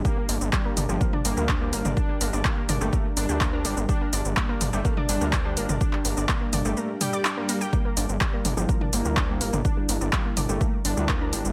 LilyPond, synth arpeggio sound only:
\new Staff \with { instrumentName = "Synth arpeggio sound" } { \time 4/4 \key g \dorian \tempo 4 = 125 <g g'>16 <bes bes'>16 <d' d''>16 r16 <g g'>16 <bes bes'>16 <d' d''>16 <g g'>16 <bes bes'>16 <d' d''>16 <g g'>16 <bes bes'>16 <d' d''>16 <g g'>16 <bes bes'>16 <d' d''>16 | r16 <g g'>16 <bes bes'>16 <d' d''>16 <g g'>16 <bes bes'>16 <d' d''>16 <g g'>16 <bes bes'>16 r16 <d' d''>16 <g g'>16 <bes bes'>16 <bes' bes''>16 <g g'>16 r16 | <g g'>16 <bes bes'>16 <d' d''>16 r16 <g g'>16 <bes bes'>16 <d' d''>16 <g g'>16 <bes bes'>16 <d' d''>16 <g g'>16 <bes bes'>16 <d' d''>16 <g g'>16 <bes bes'>16 <d' d''>16 | r16 <g g'>16 <bes bes'>16 <d' d''>16 <g g'>16 <bes bes'>16 <d' d''>16 <g g'>16 <bes bes'>16 r16 <g' g''>16 <d'' d'''>16 <d' d''>16 <bes bes'>16 <bes bes'>16 <g' g''>16 |
<g g'>16 <bes bes'>16 <d' d''>16 r16 <g g'>16 <bes bes'>16 <d' d''>16 <g g'>16 <bes bes'>16 <d' d''>16 <g g'>16 <bes bes'>16 <d' d''>16 <g g'>16 <bes bes'>16 <d' d''>16 | r16 <g g'>16 <bes bes'>16 <d' d''>16 <g g'>16 <bes bes'>16 <d' d''>16 <g g'>16 <bes bes'>16 r16 <d' d''>16 <g g'>16 <bes bes'>16 <bes' bes''>16 <g g'>16 r16 | }